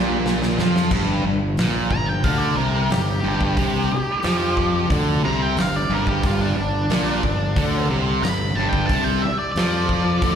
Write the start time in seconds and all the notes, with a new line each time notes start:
Already playing: A#1 A#2 G3 D4 G4 B4
0.26 snare
0.42 snare
0.59 F2 F3, snare
0.76 snare
0.91 G1 G2, kick, crash
1.24 G1 G2
1.57 A#1 A#2, snare, open hi-hat
1.90 G1 G2 A#5, kick
2.06 G5
2.24 D2 D3 F5, kick, open hi-hat
2.38 D5
2.55 C2 C3 A#4
2.90 G1 G2 G4, snare, open hi-hat
3.24 G1 G2
3.41 kick
3.57 C2 C3, kick, open hi-hat
3.91 muted fingered electric bass stroke, muted distorted electric guitar stroke
4.23 F2 F3, snare, open hi-hat
4.57 kick
4.89 D2 D3, kick, open hi-hat
5.23 C2 C3 A#5
5.42 G5
5.56 G1 G2, snare, open hi-hat
5.61 F5
5.76 D5
5.89 G1 G2
5.95 A#4
6.07 G4, kick
6.23 G1 G2 F4, kick, open hi-hat
6.41 D4
6.56 G1 G2 D4
6.90 A#1 A#2, snare, open hi-hat
7.23 G1 G2, kick
7.56 D2 D3, kick, open hi-hat
7.89 C2 C3
8.23 G1 G2 B5, snare, open hi-hat
8.55 G1 G2 A5
8.70 G5, kick
8.87 C2 C3 A5, kick, open hi-hat
9.04 G5
9.22 E5, muted fingered electric bass stroke, muted distorted electric guitar stroke
9.39 D5
9.52 F2 D5
9.56 F3, snare, open hi-hat
9.89 kick
10.22 D2 D3, kick, open hi-hat